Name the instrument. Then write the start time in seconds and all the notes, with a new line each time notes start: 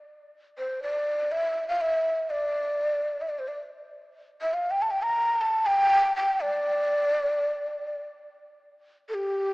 ney
0.58 C5
0.82 D5
1.32 E5
1.68 F5
1.81 E5
2.30 D5
3.21 E5
3.29 D5
3.39 C5
3.48 D5
4.42 E5
4.54 F5
4.71 G5
4.82 A5
4.91 G5
5.03 A#5
5.41 A5
5.66 G5
6.16 G5
6.41 D5
9.09 A4
9.14 G4